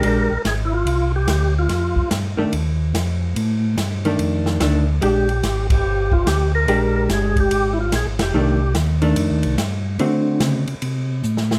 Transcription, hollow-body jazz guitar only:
X:1
M:4/4
L:1/8
Q:"Swing" 1/4=145
K:Bb
V:1 name="Hollow-body jazz guitar"
[_A,DG] z6 z | z3 [E,A,D] z4 | z3 [E,A,D]3 [E,A,D] z | [_A,DG] z6 z |
[_A,DG]4- [A,DG] z3 | [E,A,D] z2 [E,A,D]3 z2 | [D,A,C^F]3 z4 z |]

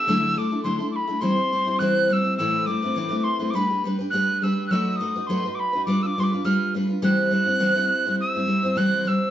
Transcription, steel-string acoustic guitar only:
X:1
M:4/4
L:1/16
Q:1/4=103
K:Dmix
V:1 name="Steel-string acoustic guitar"
[D,F,A,DEA]2 [A,DEA] [A,DEA] [D,F,A,DEA] [A,DEA]2 [A,DEA] [C,E,G,CEc] [G,CEc] [G,CEc] [G,CEc] [C,E,G,CEc]2 [G,CEc] [G,CEc] | [A,,E,A,CEB]2 [A,CEB] [A,CEB] [A,,E,A,CEB] [A,CEB]2 [A,CEB] [G,DGB] [DGB] [G,DGB] [DGB] [G,DGB]2 [G,DGB]2 | [F,A,^DFB]2 [A,DFB] [DFB] [F,A,DFB] [DFB]2 [DFB] [G,=D=FB] [DFB] [G,DFB] [DFB] [G,DFB]2 [G,DFB] [DFB] | [C,E,G,CEc]2 [G,CEc] [G,CEc] [C,E,G,CEc] [G,CEc]2 [G,CEc]2 [G,CEc] [G,CEc] [G,CEc] [C,E,G,CEc]2 [G,CEc]2 |]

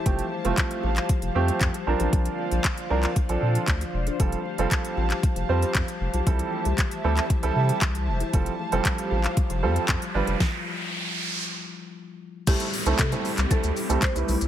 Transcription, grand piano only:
X:1
M:4/4
L:1/16
Q:1/4=116
K:C
V:1 name="Grand piano"
[F,A,CG] z2 [F,A,CF]3 z4 [F,A,CG]3 z [F,CD_B]2- | [F,CD_B]4 z2 [F,CDB] z2 [F,CDA]3 z4 | [G,CFA] z2 [G,CFA]3 z4 [G,CFc]3 z3 | [G,CEA]3 z3 [G,CEA] z2 [G,CEA]3 z4 |
[G,CFA] z2 [G,CFA]3 z4 [G,CFA]3 z [G,DFB]2 | z16 | [G,A,CEA] z2 [G,A,CEA] z [G,A,CEA] z2 [G,A,CEA] z2 [G,A,CEA] z [G,A,CEB] z2 |]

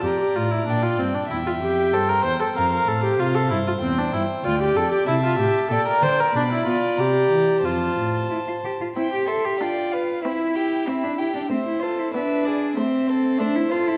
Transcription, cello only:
X:1
M:2/4
L:1/16
Q:1/4=95
K:F
V:1 name="Cello" clef=bass
F,,2 A,,2 B,,2 G,,2 | E,,2 F,,2 G,,2 E,,2 | F,,2 A,,2 C,2 G,,2 | E,,2 G,,2 D,,2 F,,2 |
C,2 A,,2 B,,2 D,2 | =B,,2 =B,2 C,2 E,2 | F,,2 A,,2 E F G F | [K:C] E G A G F4 |
E4 C D E D | C E F E D4 | C4 D E F E |]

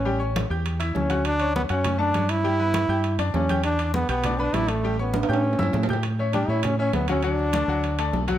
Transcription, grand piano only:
X:1
M:4/4
L:1/8
Q:1/4=200
K:Amix
V:1 name="Grand piano"
[G,Gg] [Ccc']2 [Ggg']2 [Eee']2 [Fff']- | [Fff'] [Ccc']2 [Fff'] [Ccc'] [A,Aa] [Ccc']2 | [G,Gg] [B,Bb]2 [Ggg']2 [Ddd']2 [Ggg']- | [Ggg'] [Ddd']2 [Ggg'] [Ddd'] [B,Bb] [Ddd']2 |
[G,Gg] [Ccc']2 [Ggg']2 [Eee']2 [Ggg'] | z [Cce] [G,Gg] [Cce]2 [Cce]2 [F,Ff] | [F,Ff]2 [A,Ad] [F,Ff]2 [A,Ad]2 [F,Ff] |]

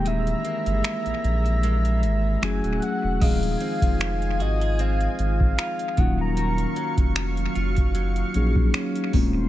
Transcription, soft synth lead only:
X:1
M:4/4
L:1/16
Q:"Swing 16ths" 1/4=76
K:Ebdor
V:1 name="Soft synth lead"
=e12 a2 g2 | f6 e2 f6 g b- | b3 z12 z |]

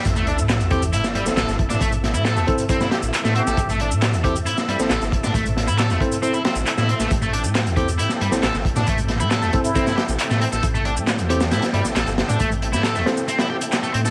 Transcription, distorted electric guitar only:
X:1
M:4/4
L:1/16
Q:1/4=136
K:Am
V:1 name="Distorted electric guitar"
z A, D z3 G z E z G, z A z2 D | A, z2 E A A, z2 C E G z2 A, C A | z A, D z3 G z E z G, z A z2 D | A, z2 E A A, z2 C E C z2 E C A, |
z A, D z3 G z E z G, z A z2 D | A, z2 E A A, z2 C E G z2 A, C A | z A, D z3 G z E z G, z A z2 D | A, z2 E A A, z2 C E G z2 A, C A |]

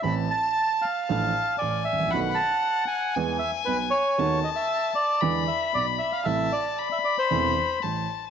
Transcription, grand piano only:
X:1
M:4/4
L:1/16
Q:1/4=116
K:Am
V:1 name="Grand piano" clef=bass
[A,,,A,,E,A,CA]2 z6 [A,,,A,,F,A,DA]2 z2 [A,,,A,,]2 z/2 ^G,,,/2 A,,,/2 _B,,,/2 | [B,,,B,,^D,A,B,^F]2 z6 [E,,E,^G,B,^G]2 z2 [B,,,B,,]2 z2 | [^D,,^D,A,B,^F]2 z6 [E,,=D,E,^G,B,E]2 z2 [B,,,B,,]2 z2 | [A,,,A,,C,E,A,E]2 z6 [E,,,E,,C,E,A,E]2 z2 [A,,,A,,]2 z2 |]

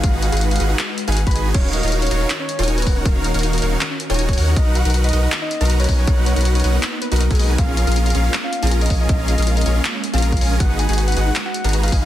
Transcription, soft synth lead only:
X:1
M:4/4
L:1/16
Q:1/4=159
K:Ebm
V:1 name="Soft synth lead"
f z f2 z f2 z4 a z c'2 z | d z e2 z d3 z d3 z c2 B- | B z B2 z B2 z4 d z d2 z | ^d2 ^f2 z d3 z d3 z _d z d- |
d z d2 z d2 z4 ^A2 _A2 z | f z f2 z f3 z f3 z e z e- | e z e2 z e2 z4 f z f2 z | g z a2 z g3 z g3 z f z f |]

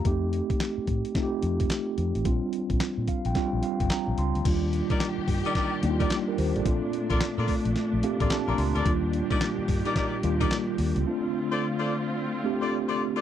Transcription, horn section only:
X:1
M:4/4
L:1/16
Q:"Swing 16ths" 1/4=109
K:Eblyd
V:1 name="Horn section"
z16 | z16 | z3 [EGBd] z3 [EGBd] [EGBd] z2 [EGBd] z4 | z3 [FABd] z [FABd] z4 z [FABd] z [FABd] z [FABd] |
z3 [EGBd] z3 [EGBd] [EGBd] z2 [EGBd] z4 | z3 [FAcd] z [FAcd] z4 z [FAcd] z [FAcd] z [FAcd] |]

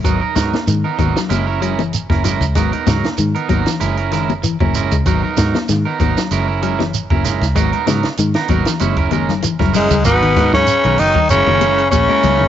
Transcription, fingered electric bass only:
X:1
M:4/4
L:1/16
Q:"Swing 16ths" 1/4=96
K:G#m
V:1 name="Fingered electric bass" clef=bass
G,,, z G,, z G,, z G,,, z F,,,4- F,,, F,,,2 C,, | G,,, z G,, z G,, z G,,, z F,,,4- F,,, F,,,2 C,, | G,,, z G,, z G,, z G,,, z F,,,4- F,,, F,,,2 C,, | G,,, z G,, z G,, z G,,, z F,,,4- F,,, F,,,2 C,, |
G,,,2 G,,2 z B,,, F,,, z F,,, F,,,3 A,,, z C,, F,,, |]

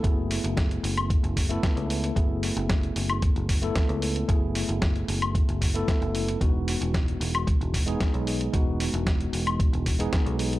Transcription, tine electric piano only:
X:1
M:4/4
L:1/16
Q:1/4=113
K:F#dor
V:1 name="Tine electric piano"
[A,B,EG]8- [A,B,EG]3 [A,B,EA]4- [A,B,EA] | [A,B,EG]8- [A,B,EG]3 [A,B,EA]4- [A,B,EA] | [A,B,EG]8- [A,B,EG]3 [A,B,EA]4- [A,B,EA] | [G,B,DF]8- [G,B,DF]3 [G,B,DG]4- [G,B,DG] |
[G,B,DF]8- [G,B,DF]3 [G,B,DG]4- [G,B,DG] |]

